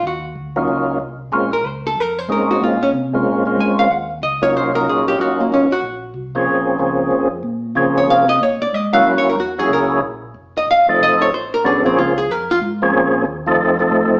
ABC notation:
X:1
M:4/4
L:1/8
Q:"Swing" 1/4=186
K:Bbm
V:1 name="Hollow-body jazz guitar"
G3 z4 z | z B c =A B c B G | F D z4 a f | g f e d c B A =G |
G B, D G3 z2 | z8 | z d f e d =d e f | (3_f d B G A B z3 |
z e f =d e _d c B | A C F A B F z2 | z8 |]
V:2 name="Tonewheel organ"
z3 [G,B,DEF]3 z2 | [A,B,CDF] z4 z [A,B,CDE]2- | [A,B,CDE] z2 [A,B,CDF]2 [A,B,CDF]3 | z3 [G,B,DEF]2 [G,B,DEF]3 |
[G,B,DEF]3 z4 [F,B,CDA]- | [F,B,CDA]2 [F,B,CDA]3 z3 | [F,B,CDA]3 z4 [G,B,D=EG]- | [G,B,D=EG]2 z [G,B,D_FA]3 z2 |
z3 [F,=A,CE=A]3 z2 | [G,_CD=D=A] [F,B,=C_D_A]2 z4 [F,B,CDA]- | [F,B,CDA]2 z [F,=A,CE=A]2 [F,A,CEA]3 |]
V:3 name="Tonewheel organ" clef=bass
E,,2 =D,,2 _D,,2 C,,2 | B,,,2 D,,2 F,,2 A,,2 | B,,2 C,2 B,,2 A,,2 | E,,2 D,,2 C,,2 B,,,2 |
G,,,2 A,,,2 B,,,2 C,,2 | B,,,2 D,,2 F,,2 B,,2 | D,2 C,2 B,, B,, A,,2 | G,,2 _F,,2 D,,2 B,,,2 |
F,,,2 =A,,, A,,, (3C,, A,,, F,,, A,,,2 | B,,,2 D,,2 F,,2 A,,2 | B,,2 E,,2 F,,2 =A,,2 |]